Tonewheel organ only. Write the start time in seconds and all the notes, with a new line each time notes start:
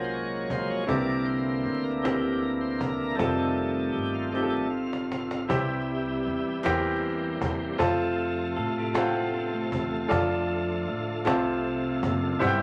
Already playing: F#3 G#3 A#3
0.04 C5
0.14 C#5
0.49 F3 G#3 A#3 C5
0.70 C#5
0.87 D3 E3 A#3 D5
1.19 D5
1.26 C5
1.64 C5
1.84 A#4
2.02 G4
2.43 A#4
2.61 C5
2.79 A#4
3.15 D#3 G3 A3 A4
3.58 A4
3.93 G4
4.14 F4
4.31 D#3 G3 A3 G4
4.50 A4
4.70 F4
4.88 F4
5.48 C3 E3 G3 E4 G4
6.64 A#3 C4 G4
7.80 C3 A3 F4 A4
10.09 D3 F3 A4
11.27 C3
12.40 E3 G3 E4 G4